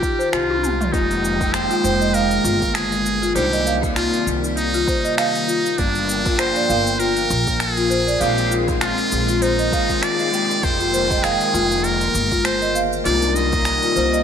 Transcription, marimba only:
0.19 0.32 C5 loud
0.33 0.92 F4 loud
0.93 1.53 F4 medium
1.71 1.84 F4 medium
1.84 2.00 C5 medium
2.01 2.14 D#5 medium
2.14 2.31 F5 medium
2.45 3.04 F4 medium
3.22 3.35 F4 medium
3.36 3.51 C5 loud
3.53 3.65 D#5 medium
3.66 3.82 F5 medium
3.96 4.56 F4 medium
4.74 4.87 F4 medium
4.87 5.03 C5 loud
5.04 5.17 D#5 medium
5.17 5.34 F5 medium
5.48 5.78 F4 medium
6.25 6.38 F4 medium
6.39 6.54 C5 loud
6.56 6.69 D5 medium
6.69 6.85 F5 medium
7.00 7.59 F4 medium
7.77 7.90 F4 medium
7.90 8.06 C5 loud
8.07 8.20 D5 medium
8.20 8.37 F5 medium
8.51 9.10 F4 medium
9.28 9.41 F4 medium
9.42 9.57 C5 medium
9.59 9.72 D#5 medium
9.73 9.89 F5 medium
10.03 10.62 F4 medium
10.80 10.93 F4 medium
10.93 11.09 C5 medium
11.24 11.40 F5 medium
11.54 12.13 F4 medium
12.32 12.44 F4 medium
12.45 12.60 C5 loud
12.62 12.74 D#5 medium
12.75 12.91 F5 medium
13.05 13.65 F4 medium
13.83 13.96 F4 medium
13.96 14.12 C5 medium
14.13 14.23 D#5 medium

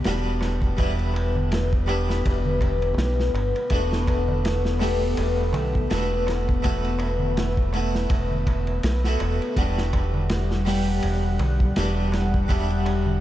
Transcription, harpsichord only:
0.05 0.75 G3 medium
0.05 0.75 B3 medium
0.05 0.75 D4 medium
0.05 0.75 F#4 medium
0.77 1.84 G3 loud
0.77 1.84 B3 medium
0.77 1.84 D4 medium
0.77 1.85 E4 loud
1.86 3.66 G3 medium
1.86 3.67 B3 medium
1.86 3.67 D4 medium
1.86 3.68 E4 loud
3.71 4.77 A3 medium
3.71 4.77 B3 medium
3.71 4.78 D4 medium
3.71 4.78 F#4 medium
4.80 5.86 A3 medium
4.80 5.87 B3 medium
4.80 5.87 D4 medium
4.80 5.88 G4 medium
5.90 6.60 A3 medium
5.90 6.60 B3 medium
5.90 6.60 D4 medium
5.90 6.60 F#4 medium
6.62 7.69 A3 medium
6.62 7.70 B3 medium
6.62 7.70 E4 medium
6.62 7.70 F#4 loud
7.74 9.00 A3 medium
7.74 9.00 B3 medium
7.74 9.01 E4 medium
7.74 9.01 F#4 loud
9.05 9.53 A3 medium
9.05 9.53 B3 medium
9.05 9.53 E4 medium
9.05 9.54 F#4 medium
9.57 10.63 G3 medium
9.57 10.63 B3 medium
9.57 10.63 D4 medium
9.57 10.64 F#4 medium
10.65 11.72 G3 medium
10.65 11.72 B3 medium
10.65 11.73 D4 medium
10.65 11.73 G4 medium
11.76 12.46 G3 medium
11.76 12.46 B3 medium
11.76 12.46 D4 medium
11.76 12.46 F#4 medium
12.48 13.20 G3 medium
12.48 13.20 B3 medium
12.48 13.20 D4 medium
12.48 13.20 E4 loud

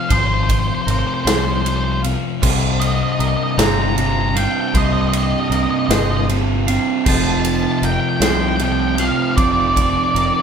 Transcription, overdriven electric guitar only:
2.41 3.56 C2 loud
2.41 3.57 G2 loud
2.41 3.58 C3 loud
3.57 3.94 C2 loud
3.57 3.95 G2 loud
3.57 3.95 C3 loud
3.95 4.33 C2 medium
3.95 4.34 G2 medium
3.95 4.34 C3 loud
4.35 4.71 C2 medium
4.35 4.72 G2 medium
4.35 4.73 C3 loud
4.72 5.88 C2 loud
4.72 5.89 G2 loud
4.72 5.90 C3 loud
5.89 6.27 C2 loud
5.89 6.29 G2 loud
5.89 6.30 C3 loud
6.29 6.66 C2 medium
6.29 6.67 G2 medium
6.29 6.68 C3 medium
6.67 7.03 C2 medium
6.67 7.04 G2 loud
6.67 7.04 C3 loud
7.06 8.20 F2 loud
7.06 8.21 C3 loud
7.06 8.22 F3 loud
8.21 8.58 F2 loud
8.21 8.60 C3 loud
8.21 8.61 F3 loud
8.60 8.97 F2 medium
8.60 8.98 C3 medium
8.60 9.00 F3 medium
8.98 9.36 F2 loud
8.98 9.37 C3 medium
8.98 9.39 F3 medium
9.37 10.42 F2 loud
9.37 10.42 C3 loud
9.37 10.42 F3 loud

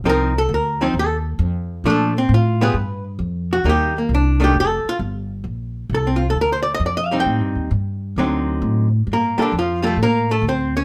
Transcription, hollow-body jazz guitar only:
0.05 0.32 F3 medium
0.05 0.32 C4 medium
0.05 0.32 D#4 medium
0.05 0.09 A4 medium
0.05 0.36 A#4 loud
0.38 0.51 A4 medium
0.54 0.81 A#4 medium
0.81 0.93 F3 medium
0.81 0.94 C4 medium
0.81 0.94 D#4 medium
0.81 0.95 C5 loud
0.99 1.16 A4 medium
1.86 2.12 F3 medium
1.86 2.13 A3 medium
1.86 2.13 D4 medium
1.90 2.17 A4 medium
2.18 2.31 C4 medium
2.34 2.61 F4 medium
2.61 2.74 G3 medium
2.61 2.74 B3 medium
2.61 2.74 F4 medium
2.61 2.74 G#4 medium
2.61 3.03 B4 medium
3.53 3.66 F#4 medium
3.65 3.92 G3 medium
3.65 3.93 A#3 medium
3.65 3.93 D#4 medium
3.69 3.97 G4 medium
3.98 4.11 A#3 medium
4.14 4.40 D4 medium
4.40 4.53 D#3 medium
4.40 4.54 A3 medium
4.40 4.54 D4 medium
4.44 4.56 G4 medium
4.60 4.87 A4 loud
4.89 4.97 F4 loud
5.94 6.07 A4 medium
6.07 6.21 C4 medium
6.16 6.26 F4 medium
6.30 6.36 A4 medium
6.41 6.52 A#4 medium
6.52 6.62 C5 medium
6.63 6.72 D5 medium
6.74 6.81 D#5 loud
6.86 6.97 D5 medium
6.97 7.06 D#5 medium
7.06 7.16 F5 medium
7.11 7.69 G3 medium
7.11 7.69 C4 medium
7.11 7.69 D#4 medium
7.20 8.29 G5 medium
8.18 8.87 D3 medium
8.18 8.87 F#3 medium
8.18 8.87 C4 medium
8.18 8.88 D#4 medium
9.13 9.37 A#3 medium
9.13 9.39 A#4 medium
9.38 9.51 G3 medium
9.38 9.51 A#3 medium
9.38 9.42 F4 medium
9.38 9.52 A4 medium
9.42 9.55 D3 medium
9.42 9.54 D4 medium
9.59 9.82 F3 medium
9.59 9.82 F4 medium
9.82 9.96 G3 medium
9.82 9.86 A#3 medium
9.82 9.97 F4 medium
9.82 9.97 A4 medium
9.87 9.99 A3 medium
10.03 10.30 A#3 medium
10.03 10.30 A#4 medium
10.31 10.44 A3 medium
10.31 10.44 A4 medium
10.49 10.76 C4 medium
10.49 10.75 C5 medium
10.77 10.84 C#4 medium
10.77 10.84 C#5 medium

